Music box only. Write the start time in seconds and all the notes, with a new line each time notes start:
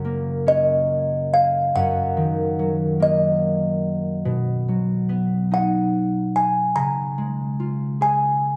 0.48 D#5
1.34 F5
1.76 F#5
3.02 D#5
5.54 F#5
6.36 G#5
6.76 A#5
8.02 G#5